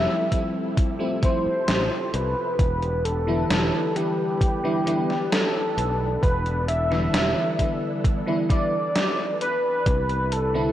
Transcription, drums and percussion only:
0.32 kick medium
0.32 closed hi-hat medium
0.77 kick loud
0.77 closed hi-hat medium
1.23 kick loud
1.23 closed hi-hat medium
1.68 snare loud
1.68 closed hi-hat medium
2.14 closed hi-hat medium
2.59 kick loud
2.59 closed hi-hat medium
2.82 closed hi-hat soft
3.05 closed hi-hat medium
3.50 snare loud
3.50 closed hi-hat medium
3.96 closed hi-hat medium
4.41 kick loud
4.41 closed hi-hat medium
4.87 closed hi-hat medium
5.10 snare soft
5.32 snare loud
5.32 closed hi-hat medium
5.78 closed hi-hat medium
6.23 kick loud
6.23 closed hi-hat medium
6.46 closed hi-hat soft
6.69 closed hi-hat medium
6.92 snare soft
7.14 snare loud
7.14 closed hi-hat medium
7.59 kick medium
7.59 closed hi-hat medium
8.05 kick loud
8.05 closed hi-hat medium
8.50 kick medium
8.50 closed hi-hat medium
8.96 snare loud
8.96 closed hi-hat medium
9.41 closed hi-hat medium
9.86 kick loud
9.86 closed hi-hat medium
10.09 closed hi-hat soft
10.32 closed hi-hat medium

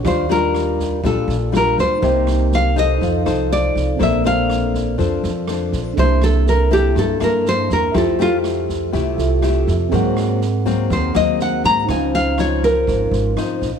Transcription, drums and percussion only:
0.05 kick medium
0.05 cross-stick medium
0.05 snare soft
0.29 snare soft
0.54 cross-stick soft
0.54 snare soft
0.79 kick soft
0.79 snare soft
1.04 kick medium
1.04 snare soft
1.29 snare soft
1.54 cross-stick medium
1.54 snare soft
1.78 kick soft
1.78 snare soft
2.02 kick medium
2.02 snare soft
2.27 cross-stick medium
2.27 snare soft
2.52 snare soft
2.76 kick soft
2.76 snare soft
3.01 kick medium
3.01 snare soft
3.26 cross-stick medium
3.26 snare soft
3.51 snare soft
3.76 kick soft
3.76 snare soft
4.00 kick medium
4.00 cross-stick medium
4.00 snare soft
4.25 snare soft
4.50 cross-stick medium
4.50 snare soft
4.74 kick soft
4.74 snare soft
4.99 kick medium
4.99 snare soft
5.23 snare soft
5.48 cross-stick medium
5.48 snare soft
5.72 kick soft
5.72 snare soft
5.96 kick medium
5.96 snare soft
6.22 cross-stick medium
6.22 snare soft
6.47 snare soft
6.71 kick soft
6.71 snare soft
6.96 kick medium
6.96 snare soft
7.21 cross-stick medium
7.21 snare soft
7.45 snare soft
7.70 kick soft
7.70 snare soft
7.95 kick medium
7.95 cross-stick medium
7.95 snare soft
8.19 snare soft
8.44 cross-stick medium
8.44 snare soft
8.69 kick soft
8.69 snare soft
8.93 kick medium
8.93 snare soft
9.18 snare soft
9.43 cross-stick medium
9.43 snare soft
9.67 kick soft
9.67 snare soft
9.92 kick medium
9.92 snare soft
10.17 cross-stick medium
10.17 snare soft
10.41 snare soft
10.66 kick soft
10.66 snare soft
10.90 kick medium
10.90 snare soft
11.15 cross-stick medium
11.15 snare soft
11.39 snare soft
11.64 kick soft
11.64 snare soft
11.89 kick medium
11.89 cross-stick medium
11.89 snare soft
12.14 snare soft
12.38 cross-stick soft
12.38 snare soft
12.63 kick soft
12.63 snare soft
12.87 kick medium
12.87 snare soft
13.13 snare soft
13.37 cross-stick medium
13.37 snare soft
13.61 kick soft
13.61 snare soft

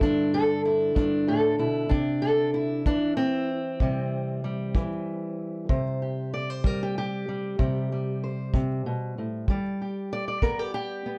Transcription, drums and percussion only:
0.01 kick medium
0.96 kick medium
1.91 kick medium
2.86 kick medium
3.80 kick medium
4.75 kick medium
5.69 kick medium
6.64 kick medium
7.59 kick medium
8.54 kick medium
9.48 kick medium
10.42 kick medium

